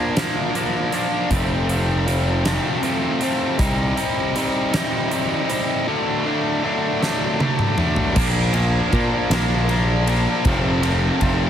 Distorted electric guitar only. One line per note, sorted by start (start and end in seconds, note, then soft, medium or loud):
0.00 0.15 A#2 medium
0.00 0.16 F3 medium
0.00 0.17 A#3 medium
0.00 0.17 D4 medium
0.17 0.53 A#2 medium
0.17 0.54 F3 medium
0.17 0.55 A#3 medium
0.17 0.55 D4 medium
0.54 0.91 A#2 medium
0.54 0.92 F3 medium
0.54 0.93 A#3 medium
0.54 0.93 D4 medium
0.93 1.28 A#2 medium
0.93 1.29 F3 medium
0.93 1.29 A#3 medium
0.93 1.29 D4 medium
1.31 1.68 F2 loud
1.31 1.68 C3 loud
1.31 1.69 F3 loud
1.31 1.70 A3 loud
1.31 1.71 C4 loud
1.69 2.05 F2 medium
1.69 2.06 C3 medium
1.69 2.06 F3 medium
1.69 2.07 A3 loud
1.69 2.08 C4 medium
2.06 2.43 F2 medium
2.06 2.44 C3 medium
2.06 2.44 F3 loud
2.06 2.44 A3 medium
2.06 2.45 C4 medium
2.44 2.81 F2 medium
2.44 2.81 C3 medium
2.44 2.82 F3 medium
2.44 2.82 A3 medium
2.44 2.83 C4 medium
2.82 3.20 F2 medium
2.82 3.21 C3 medium
2.82 3.21 F3 medium
2.82 3.21 A3 loud
2.82 3.22 C4 loud
3.21 3.57 F2 medium
3.21 3.57 C3 medium
3.21 3.57 F3 medium
3.21 3.57 A3 medium
3.21 3.58 C4 medium
3.58 3.95 C3 medium
3.58 3.95 G3 loud
3.58 3.96 C4 loud
3.58 3.97 D#4 loud
3.96 4.35 C3 medium
3.96 4.35 G3 medium
3.96 4.35 C4 medium
3.96 4.35 D#4 medium
4.36 4.71 C3 medium
4.36 4.72 G3 medium
4.36 4.72 C4 loud
4.36 4.73 D#4 loud
4.72 5.09 C3 medium
4.72 5.10 G3 medium
4.72 5.11 C4 medium
4.72 5.11 D#4 loud
5.10 5.47 C3 medium
5.10 5.48 G3 medium
5.10 5.48 C4 loud
5.10 5.49 D#4 loud
5.49 5.85 C3 medium
5.49 5.85 G3 medium
5.49 5.85 C4 medium
5.49 5.86 D#4 loud
5.87 6.24 D3 loud
5.87 6.24 F#3 loud
5.87 6.25 A3 loud
5.87 6.25 D4 loud
6.25 6.62 D3 medium
6.25 6.64 F#3 medium
6.25 6.63 A3 loud
6.25 6.64 D4 loud
6.63 7.00 D3 loud
6.63 7.01 F#3 medium
6.63 7.02 A3 loud
6.63 7.02 D4 medium
7.01 7.39 D3 medium
7.01 7.39 F#3 medium
7.01 7.40 A3 medium
7.01 7.41 D4 loud
7.40 7.77 D3 medium
7.40 7.77 F#3 loud
7.40 7.77 A3 medium
7.40 7.79 D4 loud
7.78 8.14 D3 medium
7.78 8.14 F#3 medium
7.78 8.14 A3 medium
7.78 8.15 D4 medium
8.16 8.52 A#2 medium
8.16 8.54 F3 loud
8.16 8.54 A#3 loud
8.16 8.54 D4 loud
8.54 8.91 A#2 medium
8.54 8.92 F3 medium
8.54 8.92 A#3 loud
8.54 8.93 D4 loud
8.92 9.30 A#2 medium
8.92 9.30 F3 medium
8.92 9.30 A#3 loud
8.92 9.30 D4 loud
9.31 9.68 A#2 medium
9.31 9.69 F3 medium
9.31 9.69 A#3 medium
9.31 9.70 D4 medium
9.69 10.06 A#2 medium
9.69 10.06 F3 loud
9.69 10.08 A#3 loud
9.69 10.08 D4 loud
10.07 10.43 A#2 medium
10.07 10.43 F3 loud
10.07 10.43 A#3 loud
10.07 10.43 D4 loud
10.46 10.81 F2 loud
10.46 10.82 C3 loud
10.46 10.82 F3 loud
10.46 10.82 A3 loud
10.46 10.83 C4 loud
10.82 11.18 F2 loud
10.82 11.19 C3 loud
10.82 11.20 F3 medium
10.82 11.21 A3 medium
10.82 11.22 C4 loud
11.20 11.50 F2 medium
11.20 11.50 C3 loud
11.20 11.50 F3 loud
11.20 11.50 A3 medium
11.20 11.50 C4 loud